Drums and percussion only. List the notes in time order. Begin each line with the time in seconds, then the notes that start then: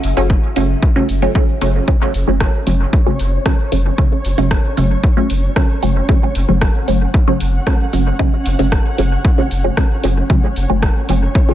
0.04 open hi-hat
0.17 open hi-hat
0.30 kick
0.56 open hi-hat
0.83 kick
1.09 open hi-hat
1.35 kick
1.61 open hi-hat
1.88 kick
2.14 open hi-hat
2.40 kick, cross-stick
2.67 open hi-hat
2.93 kick
3.19 open hi-hat
3.46 kick, cross-stick
3.72 open hi-hat
3.98 kick
4.25 open hi-hat
4.38 open hi-hat
4.51 kick, cross-stick
4.77 open hi-hat
5.04 kick
5.30 open hi-hat
5.56 kick, cross-stick
5.83 open hi-hat
6.09 kick
6.35 open hi-hat
6.61 kick, cross-stick
6.88 open hi-hat
7.14 kick
7.40 open hi-hat
7.67 kick, cross-stick
7.93 open hi-hat
8.19 kick
8.46 open hi-hat
8.59 open hi-hat
8.72 kick, cross-stick
8.98 open hi-hat
9.25 kick
9.51 open hi-hat
9.77 kick, cross-stick
10.04 open hi-hat
10.30 kick
10.56 open hi-hat
10.83 kick, cross-stick
11.09 open hi-hat
11.35 kick